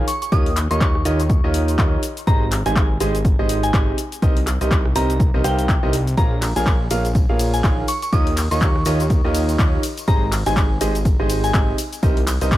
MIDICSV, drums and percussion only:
0, 0, Header, 1, 2, 480
1, 0, Start_track
1, 0, Tempo, 487805
1, 316, Time_signature, 4, 2, 24, 8
1, 12373, End_track
2, 0, Start_track
2, 0, Title_t, "Drums"
2, 76, Note_on_c, 9, 46, 109
2, 81, Note_on_c, 9, 69, 83
2, 174, Note_off_c, 9, 46, 0
2, 179, Note_off_c, 9, 69, 0
2, 216, Note_on_c, 9, 42, 71
2, 221, Note_on_c, 9, 69, 47
2, 315, Note_off_c, 9, 42, 0
2, 315, Note_on_c, 9, 36, 122
2, 316, Note_on_c, 9, 42, 52
2, 320, Note_off_c, 9, 69, 0
2, 321, Note_on_c, 9, 69, 32
2, 414, Note_off_c, 9, 36, 0
2, 414, Note_off_c, 9, 42, 0
2, 419, Note_off_c, 9, 69, 0
2, 456, Note_on_c, 9, 46, 65
2, 554, Note_off_c, 9, 46, 0
2, 556, Note_on_c, 9, 46, 110
2, 560, Note_on_c, 9, 39, 69
2, 561, Note_on_c, 9, 69, 75
2, 654, Note_off_c, 9, 46, 0
2, 658, Note_off_c, 9, 39, 0
2, 659, Note_off_c, 9, 69, 0
2, 696, Note_on_c, 9, 42, 69
2, 701, Note_on_c, 9, 69, 43
2, 794, Note_off_c, 9, 42, 0
2, 795, Note_on_c, 9, 36, 126
2, 796, Note_on_c, 9, 42, 54
2, 799, Note_off_c, 9, 69, 0
2, 800, Note_on_c, 9, 39, 127
2, 801, Note_on_c, 9, 69, 33
2, 894, Note_off_c, 9, 36, 0
2, 895, Note_off_c, 9, 42, 0
2, 898, Note_off_c, 9, 39, 0
2, 900, Note_off_c, 9, 69, 0
2, 936, Note_on_c, 9, 37, 62
2, 1035, Note_off_c, 9, 37, 0
2, 1036, Note_on_c, 9, 46, 111
2, 1041, Note_on_c, 9, 69, 77
2, 1135, Note_off_c, 9, 46, 0
2, 1140, Note_off_c, 9, 69, 0
2, 1176, Note_on_c, 9, 42, 67
2, 1181, Note_on_c, 9, 69, 41
2, 1275, Note_off_c, 9, 42, 0
2, 1275, Note_on_c, 9, 36, 127
2, 1277, Note_on_c, 9, 42, 56
2, 1280, Note_off_c, 9, 69, 0
2, 1281, Note_on_c, 9, 69, 35
2, 1374, Note_off_c, 9, 36, 0
2, 1375, Note_off_c, 9, 42, 0
2, 1380, Note_off_c, 9, 69, 0
2, 1516, Note_on_c, 9, 46, 108
2, 1521, Note_on_c, 9, 69, 76
2, 1614, Note_off_c, 9, 46, 0
2, 1619, Note_off_c, 9, 69, 0
2, 1655, Note_on_c, 9, 42, 67
2, 1660, Note_on_c, 9, 69, 43
2, 1754, Note_off_c, 9, 42, 0
2, 1755, Note_on_c, 9, 36, 127
2, 1756, Note_on_c, 9, 42, 56
2, 1759, Note_off_c, 9, 69, 0
2, 1759, Note_on_c, 9, 39, 127
2, 1761, Note_on_c, 9, 69, 34
2, 1854, Note_off_c, 9, 36, 0
2, 1854, Note_off_c, 9, 42, 0
2, 1858, Note_off_c, 9, 39, 0
2, 1859, Note_off_c, 9, 69, 0
2, 1996, Note_on_c, 9, 46, 114
2, 2001, Note_on_c, 9, 69, 79
2, 2094, Note_off_c, 9, 46, 0
2, 2099, Note_off_c, 9, 69, 0
2, 2136, Note_on_c, 9, 42, 69
2, 2141, Note_on_c, 9, 69, 44
2, 2234, Note_off_c, 9, 42, 0
2, 2235, Note_on_c, 9, 36, 126
2, 2236, Note_on_c, 9, 42, 52
2, 2239, Note_off_c, 9, 69, 0
2, 2241, Note_on_c, 9, 69, 33
2, 2334, Note_off_c, 9, 36, 0
2, 2334, Note_off_c, 9, 42, 0
2, 2339, Note_off_c, 9, 69, 0
2, 2476, Note_on_c, 9, 37, 64
2, 2476, Note_on_c, 9, 46, 110
2, 2479, Note_on_c, 9, 39, 64
2, 2481, Note_on_c, 9, 69, 75
2, 2574, Note_off_c, 9, 37, 0
2, 2574, Note_off_c, 9, 46, 0
2, 2578, Note_off_c, 9, 39, 0
2, 2579, Note_off_c, 9, 69, 0
2, 2616, Note_on_c, 9, 42, 65
2, 2621, Note_on_c, 9, 69, 42
2, 2714, Note_off_c, 9, 42, 0
2, 2715, Note_on_c, 9, 36, 124
2, 2716, Note_on_c, 9, 42, 54
2, 2719, Note_off_c, 9, 69, 0
2, 2720, Note_on_c, 9, 39, 126
2, 2721, Note_on_c, 9, 69, 32
2, 2814, Note_off_c, 9, 36, 0
2, 2815, Note_off_c, 9, 42, 0
2, 2818, Note_off_c, 9, 39, 0
2, 2820, Note_off_c, 9, 69, 0
2, 2956, Note_on_c, 9, 46, 109
2, 2961, Note_on_c, 9, 69, 75
2, 3055, Note_off_c, 9, 46, 0
2, 3060, Note_off_c, 9, 69, 0
2, 3097, Note_on_c, 9, 42, 62
2, 3102, Note_on_c, 9, 69, 44
2, 3195, Note_off_c, 9, 42, 0
2, 3196, Note_on_c, 9, 36, 127
2, 3197, Note_on_c, 9, 42, 55
2, 3200, Note_off_c, 9, 69, 0
2, 3202, Note_on_c, 9, 69, 34
2, 3294, Note_off_c, 9, 36, 0
2, 3295, Note_off_c, 9, 42, 0
2, 3300, Note_off_c, 9, 69, 0
2, 3436, Note_on_c, 9, 46, 107
2, 3441, Note_on_c, 9, 69, 71
2, 3535, Note_off_c, 9, 46, 0
2, 3540, Note_off_c, 9, 69, 0
2, 3576, Note_on_c, 9, 42, 66
2, 3581, Note_on_c, 9, 69, 43
2, 3674, Note_off_c, 9, 42, 0
2, 3676, Note_on_c, 9, 36, 127
2, 3676, Note_on_c, 9, 37, 86
2, 3676, Note_on_c, 9, 42, 54
2, 3679, Note_off_c, 9, 69, 0
2, 3680, Note_on_c, 9, 39, 127
2, 3681, Note_on_c, 9, 69, 34
2, 3774, Note_off_c, 9, 36, 0
2, 3775, Note_off_c, 9, 37, 0
2, 3775, Note_off_c, 9, 42, 0
2, 3779, Note_off_c, 9, 39, 0
2, 3780, Note_off_c, 9, 69, 0
2, 3917, Note_on_c, 9, 46, 120
2, 3921, Note_on_c, 9, 69, 79
2, 4015, Note_off_c, 9, 46, 0
2, 4020, Note_off_c, 9, 69, 0
2, 4056, Note_on_c, 9, 42, 68
2, 4061, Note_on_c, 9, 69, 44
2, 4155, Note_off_c, 9, 42, 0
2, 4156, Note_on_c, 9, 36, 125
2, 4156, Note_on_c, 9, 42, 51
2, 4160, Note_off_c, 9, 69, 0
2, 4161, Note_on_c, 9, 69, 34
2, 4254, Note_off_c, 9, 36, 0
2, 4255, Note_off_c, 9, 42, 0
2, 4260, Note_off_c, 9, 69, 0
2, 4296, Note_on_c, 9, 46, 64
2, 4395, Note_off_c, 9, 46, 0
2, 4397, Note_on_c, 9, 37, 67
2, 4397, Note_on_c, 9, 46, 107
2, 4400, Note_on_c, 9, 39, 62
2, 4401, Note_on_c, 9, 69, 79
2, 4495, Note_off_c, 9, 37, 0
2, 4495, Note_off_c, 9, 46, 0
2, 4499, Note_off_c, 9, 39, 0
2, 4500, Note_off_c, 9, 69, 0
2, 4537, Note_on_c, 9, 42, 64
2, 4542, Note_on_c, 9, 69, 46
2, 4635, Note_off_c, 9, 42, 0
2, 4636, Note_on_c, 9, 36, 122
2, 4637, Note_on_c, 9, 42, 53
2, 4640, Note_off_c, 9, 69, 0
2, 4641, Note_on_c, 9, 39, 119
2, 4642, Note_on_c, 9, 69, 35
2, 4734, Note_off_c, 9, 36, 0
2, 4735, Note_off_c, 9, 42, 0
2, 4739, Note_off_c, 9, 39, 0
2, 4740, Note_off_c, 9, 69, 0
2, 4777, Note_on_c, 9, 37, 65
2, 4875, Note_off_c, 9, 37, 0
2, 4877, Note_on_c, 9, 46, 113
2, 4882, Note_on_c, 9, 69, 79
2, 4975, Note_off_c, 9, 46, 0
2, 4980, Note_off_c, 9, 69, 0
2, 5017, Note_on_c, 9, 42, 63
2, 5022, Note_on_c, 9, 69, 44
2, 5116, Note_off_c, 9, 42, 0
2, 5116, Note_on_c, 9, 36, 123
2, 5117, Note_on_c, 9, 42, 52
2, 5120, Note_off_c, 9, 69, 0
2, 5122, Note_on_c, 9, 69, 35
2, 5214, Note_off_c, 9, 36, 0
2, 5215, Note_off_c, 9, 42, 0
2, 5220, Note_off_c, 9, 69, 0
2, 5357, Note_on_c, 9, 46, 108
2, 5362, Note_on_c, 9, 69, 78
2, 5455, Note_off_c, 9, 46, 0
2, 5460, Note_off_c, 9, 69, 0
2, 5497, Note_on_c, 9, 42, 62
2, 5502, Note_on_c, 9, 69, 44
2, 5595, Note_off_c, 9, 42, 0
2, 5596, Note_on_c, 9, 36, 127
2, 5597, Note_on_c, 9, 42, 52
2, 5600, Note_off_c, 9, 69, 0
2, 5600, Note_on_c, 9, 39, 122
2, 5602, Note_on_c, 9, 69, 35
2, 5694, Note_off_c, 9, 36, 0
2, 5695, Note_off_c, 9, 42, 0
2, 5699, Note_off_c, 9, 39, 0
2, 5700, Note_off_c, 9, 69, 0
2, 5837, Note_on_c, 9, 46, 115
2, 5842, Note_on_c, 9, 69, 77
2, 5935, Note_off_c, 9, 46, 0
2, 5940, Note_off_c, 9, 69, 0
2, 5977, Note_on_c, 9, 42, 64
2, 5982, Note_on_c, 9, 69, 44
2, 6075, Note_off_c, 9, 42, 0
2, 6076, Note_on_c, 9, 36, 121
2, 6076, Note_on_c, 9, 42, 51
2, 6076, Note_on_c, 9, 54, 38
2, 6080, Note_off_c, 9, 69, 0
2, 6081, Note_on_c, 9, 69, 34
2, 6174, Note_off_c, 9, 36, 0
2, 6174, Note_off_c, 9, 54, 0
2, 6175, Note_off_c, 9, 42, 0
2, 6180, Note_off_c, 9, 69, 0
2, 6316, Note_on_c, 9, 37, 67
2, 6316, Note_on_c, 9, 46, 106
2, 6316, Note_on_c, 9, 51, 82
2, 6317, Note_on_c, 9, 54, 89
2, 6320, Note_on_c, 9, 39, 60
2, 6321, Note_on_c, 9, 69, 80
2, 6414, Note_off_c, 9, 37, 0
2, 6414, Note_off_c, 9, 46, 0
2, 6414, Note_off_c, 9, 51, 0
2, 6415, Note_off_c, 9, 54, 0
2, 6418, Note_off_c, 9, 39, 0
2, 6419, Note_off_c, 9, 69, 0
2, 6454, Note_on_c, 9, 54, 54
2, 6456, Note_on_c, 9, 42, 66
2, 6461, Note_on_c, 9, 69, 48
2, 6553, Note_off_c, 9, 54, 0
2, 6555, Note_off_c, 9, 42, 0
2, 6555, Note_on_c, 9, 54, 36
2, 6556, Note_on_c, 9, 36, 118
2, 6556, Note_on_c, 9, 42, 53
2, 6560, Note_off_c, 9, 69, 0
2, 6560, Note_on_c, 9, 39, 120
2, 6561, Note_on_c, 9, 69, 35
2, 6653, Note_off_c, 9, 54, 0
2, 6654, Note_off_c, 9, 36, 0
2, 6654, Note_off_c, 9, 42, 0
2, 6658, Note_off_c, 9, 39, 0
2, 6659, Note_off_c, 9, 69, 0
2, 6792, Note_on_c, 9, 54, 88
2, 6796, Note_on_c, 9, 46, 108
2, 6796, Note_on_c, 9, 51, 83
2, 6801, Note_on_c, 9, 69, 80
2, 6890, Note_off_c, 9, 54, 0
2, 6894, Note_off_c, 9, 46, 0
2, 6894, Note_off_c, 9, 51, 0
2, 6899, Note_off_c, 9, 69, 0
2, 6935, Note_on_c, 9, 54, 49
2, 6936, Note_on_c, 9, 42, 61
2, 6941, Note_on_c, 9, 69, 45
2, 7033, Note_off_c, 9, 54, 0
2, 7033, Note_on_c, 9, 54, 46
2, 7034, Note_off_c, 9, 42, 0
2, 7035, Note_on_c, 9, 36, 121
2, 7036, Note_on_c, 9, 42, 54
2, 7039, Note_off_c, 9, 69, 0
2, 7041, Note_on_c, 9, 69, 35
2, 7132, Note_off_c, 9, 54, 0
2, 7134, Note_off_c, 9, 36, 0
2, 7134, Note_off_c, 9, 42, 0
2, 7139, Note_off_c, 9, 69, 0
2, 7276, Note_on_c, 9, 46, 108
2, 7276, Note_on_c, 9, 51, 81
2, 7276, Note_on_c, 9, 54, 84
2, 7281, Note_on_c, 9, 69, 81
2, 7374, Note_off_c, 9, 46, 0
2, 7374, Note_off_c, 9, 51, 0
2, 7374, Note_off_c, 9, 54, 0
2, 7379, Note_off_c, 9, 69, 0
2, 7414, Note_on_c, 9, 54, 57
2, 7416, Note_on_c, 9, 42, 62
2, 7421, Note_on_c, 9, 69, 46
2, 7512, Note_off_c, 9, 54, 0
2, 7514, Note_off_c, 9, 42, 0
2, 7515, Note_on_c, 9, 36, 127
2, 7516, Note_on_c, 9, 37, 88
2, 7516, Note_on_c, 9, 42, 53
2, 7519, Note_off_c, 9, 69, 0
2, 7519, Note_on_c, 9, 39, 117
2, 7521, Note_on_c, 9, 69, 34
2, 7525, Note_on_c, 9, 54, 37
2, 7614, Note_off_c, 9, 36, 0
2, 7614, Note_off_c, 9, 37, 0
2, 7614, Note_off_c, 9, 42, 0
2, 7618, Note_off_c, 9, 39, 0
2, 7619, Note_off_c, 9, 69, 0
2, 7623, Note_off_c, 9, 54, 0
2, 7751, Note_on_c, 9, 54, 87
2, 7756, Note_on_c, 9, 46, 111
2, 7756, Note_on_c, 9, 51, 89
2, 7761, Note_on_c, 9, 69, 81
2, 7850, Note_off_c, 9, 54, 0
2, 7854, Note_off_c, 9, 46, 0
2, 7854, Note_off_c, 9, 51, 0
2, 7859, Note_off_c, 9, 69, 0
2, 7896, Note_on_c, 9, 42, 66
2, 7901, Note_on_c, 9, 54, 53
2, 7901, Note_on_c, 9, 69, 48
2, 7994, Note_off_c, 9, 42, 0
2, 7994, Note_off_c, 9, 54, 0
2, 7994, Note_on_c, 9, 54, 37
2, 7996, Note_on_c, 9, 36, 115
2, 7996, Note_on_c, 9, 42, 51
2, 7999, Note_off_c, 9, 69, 0
2, 8001, Note_on_c, 9, 69, 36
2, 8092, Note_off_c, 9, 54, 0
2, 8094, Note_off_c, 9, 36, 0
2, 8094, Note_off_c, 9, 42, 0
2, 8099, Note_off_c, 9, 69, 0
2, 8136, Note_on_c, 9, 46, 59
2, 8233, Note_on_c, 9, 54, 81
2, 8235, Note_off_c, 9, 46, 0
2, 8236, Note_on_c, 9, 46, 108
2, 8236, Note_on_c, 9, 51, 86
2, 8240, Note_on_c, 9, 39, 59
2, 8241, Note_on_c, 9, 69, 81
2, 8332, Note_off_c, 9, 54, 0
2, 8335, Note_off_c, 9, 46, 0
2, 8335, Note_off_c, 9, 51, 0
2, 8339, Note_off_c, 9, 39, 0
2, 8340, Note_off_c, 9, 69, 0
2, 8376, Note_on_c, 9, 42, 67
2, 8377, Note_on_c, 9, 54, 52
2, 8381, Note_on_c, 9, 69, 47
2, 8464, Note_off_c, 9, 54, 0
2, 8464, Note_on_c, 9, 54, 39
2, 8475, Note_off_c, 9, 42, 0
2, 8476, Note_on_c, 9, 36, 114
2, 8476, Note_on_c, 9, 42, 53
2, 8480, Note_off_c, 9, 69, 0
2, 8480, Note_on_c, 9, 39, 118
2, 8481, Note_on_c, 9, 69, 36
2, 8562, Note_off_c, 9, 54, 0
2, 8574, Note_off_c, 9, 36, 0
2, 8575, Note_off_c, 9, 42, 0
2, 8579, Note_off_c, 9, 39, 0
2, 8580, Note_off_c, 9, 69, 0
2, 8616, Note_on_c, 9, 37, 61
2, 8709, Note_on_c, 9, 54, 90
2, 8715, Note_off_c, 9, 37, 0
2, 8716, Note_on_c, 9, 46, 107
2, 8716, Note_on_c, 9, 51, 85
2, 8721, Note_on_c, 9, 69, 81
2, 8808, Note_off_c, 9, 54, 0
2, 8814, Note_off_c, 9, 46, 0
2, 8814, Note_off_c, 9, 51, 0
2, 8819, Note_off_c, 9, 69, 0
2, 8856, Note_on_c, 9, 42, 64
2, 8859, Note_on_c, 9, 54, 50
2, 8861, Note_on_c, 9, 69, 46
2, 8954, Note_off_c, 9, 42, 0
2, 8954, Note_off_c, 9, 54, 0
2, 8954, Note_on_c, 9, 54, 37
2, 8956, Note_on_c, 9, 36, 113
2, 8956, Note_on_c, 9, 42, 55
2, 8959, Note_off_c, 9, 69, 0
2, 8961, Note_on_c, 9, 69, 37
2, 9052, Note_off_c, 9, 54, 0
2, 9054, Note_off_c, 9, 36, 0
2, 9054, Note_off_c, 9, 42, 0
2, 9059, Note_off_c, 9, 69, 0
2, 9195, Note_on_c, 9, 54, 95
2, 9196, Note_on_c, 9, 46, 98
2, 9196, Note_on_c, 9, 51, 82
2, 9201, Note_on_c, 9, 69, 81
2, 9294, Note_off_c, 9, 46, 0
2, 9294, Note_off_c, 9, 51, 0
2, 9294, Note_off_c, 9, 54, 0
2, 9299, Note_off_c, 9, 69, 0
2, 9333, Note_on_c, 9, 54, 50
2, 9336, Note_on_c, 9, 42, 65
2, 9341, Note_on_c, 9, 69, 47
2, 9432, Note_off_c, 9, 54, 0
2, 9435, Note_off_c, 9, 42, 0
2, 9436, Note_on_c, 9, 36, 127
2, 9436, Note_on_c, 9, 42, 56
2, 9440, Note_off_c, 9, 69, 0
2, 9440, Note_on_c, 9, 39, 119
2, 9440, Note_on_c, 9, 54, 40
2, 9441, Note_on_c, 9, 69, 37
2, 9534, Note_off_c, 9, 36, 0
2, 9534, Note_off_c, 9, 42, 0
2, 9538, Note_off_c, 9, 39, 0
2, 9539, Note_off_c, 9, 54, 0
2, 9539, Note_off_c, 9, 69, 0
2, 9676, Note_on_c, 9, 46, 105
2, 9676, Note_on_c, 9, 51, 86
2, 9678, Note_on_c, 9, 54, 100
2, 9680, Note_on_c, 9, 69, 87
2, 9774, Note_off_c, 9, 46, 0
2, 9774, Note_off_c, 9, 51, 0
2, 9776, Note_off_c, 9, 54, 0
2, 9779, Note_off_c, 9, 69, 0
2, 9812, Note_on_c, 9, 54, 54
2, 9816, Note_on_c, 9, 42, 68
2, 9821, Note_on_c, 9, 69, 48
2, 9910, Note_off_c, 9, 54, 0
2, 9913, Note_on_c, 9, 54, 34
2, 9914, Note_off_c, 9, 42, 0
2, 9916, Note_on_c, 9, 36, 114
2, 9916, Note_on_c, 9, 42, 57
2, 9919, Note_off_c, 9, 69, 0
2, 9921, Note_on_c, 9, 69, 36
2, 10011, Note_off_c, 9, 54, 0
2, 10014, Note_off_c, 9, 36, 0
2, 10014, Note_off_c, 9, 42, 0
2, 10019, Note_off_c, 9, 69, 0
2, 10156, Note_on_c, 9, 37, 61
2, 10156, Note_on_c, 9, 46, 104
2, 10156, Note_on_c, 9, 51, 87
2, 10159, Note_on_c, 9, 54, 85
2, 10160, Note_on_c, 9, 39, 63
2, 10161, Note_on_c, 9, 69, 83
2, 10254, Note_off_c, 9, 37, 0
2, 10254, Note_off_c, 9, 46, 0
2, 10254, Note_off_c, 9, 51, 0
2, 10258, Note_off_c, 9, 39, 0
2, 10258, Note_off_c, 9, 54, 0
2, 10259, Note_off_c, 9, 69, 0
2, 10291, Note_on_c, 9, 54, 53
2, 10296, Note_on_c, 9, 42, 72
2, 10301, Note_on_c, 9, 69, 50
2, 10389, Note_off_c, 9, 54, 0
2, 10394, Note_off_c, 9, 42, 0
2, 10396, Note_on_c, 9, 36, 112
2, 10396, Note_on_c, 9, 42, 58
2, 10398, Note_on_c, 9, 54, 38
2, 10399, Note_off_c, 9, 69, 0
2, 10400, Note_on_c, 9, 39, 118
2, 10401, Note_on_c, 9, 69, 36
2, 10494, Note_off_c, 9, 36, 0
2, 10494, Note_off_c, 9, 42, 0
2, 10496, Note_off_c, 9, 54, 0
2, 10498, Note_off_c, 9, 39, 0
2, 10499, Note_off_c, 9, 69, 0
2, 10635, Note_on_c, 9, 46, 100
2, 10635, Note_on_c, 9, 51, 81
2, 10638, Note_on_c, 9, 54, 93
2, 10640, Note_on_c, 9, 69, 83
2, 10734, Note_off_c, 9, 46, 0
2, 10734, Note_off_c, 9, 51, 0
2, 10737, Note_off_c, 9, 54, 0
2, 10739, Note_off_c, 9, 69, 0
2, 10775, Note_on_c, 9, 42, 67
2, 10780, Note_on_c, 9, 54, 53
2, 10781, Note_on_c, 9, 69, 48
2, 10874, Note_off_c, 9, 42, 0
2, 10876, Note_on_c, 9, 36, 113
2, 10876, Note_on_c, 9, 42, 57
2, 10879, Note_off_c, 9, 54, 0
2, 10879, Note_off_c, 9, 69, 0
2, 10881, Note_on_c, 9, 69, 36
2, 10883, Note_on_c, 9, 54, 38
2, 10974, Note_off_c, 9, 36, 0
2, 10974, Note_off_c, 9, 42, 0
2, 10979, Note_off_c, 9, 69, 0
2, 10981, Note_off_c, 9, 54, 0
2, 11113, Note_on_c, 9, 54, 85
2, 11115, Note_on_c, 9, 46, 97
2, 11115, Note_on_c, 9, 51, 77
2, 11120, Note_on_c, 9, 69, 82
2, 11211, Note_off_c, 9, 54, 0
2, 11214, Note_off_c, 9, 46, 0
2, 11214, Note_off_c, 9, 51, 0
2, 11219, Note_off_c, 9, 69, 0
2, 11255, Note_on_c, 9, 42, 70
2, 11257, Note_on_c, 9, 54, 48
2, 11260, Note_on_c, 9, 69, 49
2, 11354, Note_off_c, 9, 42, 0
2, 11355, Note_off_c, 9, 54, 0
2, 11355, Note_on_c, 9, 37, 81
2, 11355, Note_on_c, 9, 42, 58
2, 11356, Note_on_c, 9, 36, 125
2, 11359, Note_off_c, 9, 69, 0
2, 11359, Note_on_c, 9, 39, 125
2, 11360, Note_on_c, 9, 69, 38
2, 11454, Note_off_c, 9, 36, 0
2, 11454, Note_off_c, 9, 37, 0
2, 11454, Note_off_c, 9, 42, 0
2, 11457, Note_off_c, 9, 39, 0
2, 11458, Note_off_c, 9, 69, 0
2, 11595, Note_on_c, 9, 46, 103
2, 11595, Note_on_c, 9, 51, 81
2, 11596, Note_on_c, 9, 54, 102
2, 11600, Note_on_c, 9, 69, 86
2, 11693, Note_off_c, 9, 46, 0
2, 11693, Note_off_c, 9, 51, 0
2, 11695, Note_off_c, 9, 54, 0
2, 11698, Note_off_c, 9, 69, 0
2, 11734, Note_on_c, 9, 54, 49
2, 11735, Note_on_c, 9, 42, 70
2, 11740, Note_on_c, 9, 69, 50
2, 11833, Note_off_c, 9, 42, 0
2, 11833, Note_off_c, 9, 54, 0
2, 11835, Note_on_c, 9, 36, 117
2, 11835, Note_on_c, 9, 42, 59
2, 11836, Note_on_c, 9, 54, 37
2, 11839, Note_off_c, 9, 69, 0
2, 11840, Note_on_c, 9, 69, 36
2, 11934, Note_off_c, 9, 36, 0
2, 11934, Note_off_c, 9, 42, 0
2, 11934, Note_off_c, 9, 54, 0
2, 11939, Note_off_c, 9, 69, 0
2, 11975, Note_on_c, 9, 46, 60
2, 12073, Note_off_c, 9, 46, 0
2, 12075, Note_on_c, 9, 37, 61
2, 12075, Note_on_c, 9, 46, 108
2, 12075, Note_on_c, 9, 51, 80
2, 12079, Note_on_c, 9, 39, 64
2, 12080, Note_on_c, 9, 54, 95
2, 12080, Note_on_c, 9, 69, 85
2, 12173, Note_off_c, 9, 37, 0
2, 12173, Note_off_c, 9, 46, 0
2, 12173, Note_off_c, 9, 51, 0
2, 12177, Note_off_c, 9, 39, 0
2, 12178, Note_off_c, 9, 69, 0
2, 12179, Note_off_c, 9, 54, 0
2, 12215, Note_on_c, 9, 42, 71
2, 12219, Note_on_c, 9, 54, 52
2, 12220, Note_on_c, 9, 69, 49
2, 12314, Note_off_c, 9, 42, 0
2, 12315, Note_on_c, 9, 36, 113
2, 12315, Note_on_c, 9, 42, 60
2, 12317, Note_off_c, 9, 54, 0
2, 12319, Note_off_c, 9, 69, 0
2, 12319, Note_on_c, 9, 39, 124
2, 12320, Note_on_c, 9, 69, 37
2, 12321, Note_on_c, 9, 54, 35
2, 12373, Note_off_c, 9, 36, 0
2, 12373, Note_off_c, 9, 39, 0
2, 12373, Note_off_c, 9, 42, 0
2, 12373, Note_off_c, 9, 54, 0
2, 12373, Note_off_c, 9, 69, 0
2, 12373, End_track
0, 0, End_of_file